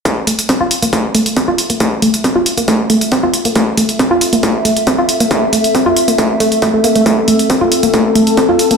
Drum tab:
HH |x-xxx-xxx-xxx-xx|x-xxx-xxx-xxx-xx|x-xxx-xxx-xxx-xx|x-xxx-xxx-xxx-xx|
BD |o---o---o---o---|o---o---o---o---|o---o---o---o---|o---o---o---o---|

HH |x-xxx-xxx-xxx-xx|
BD |o---o---o---o---|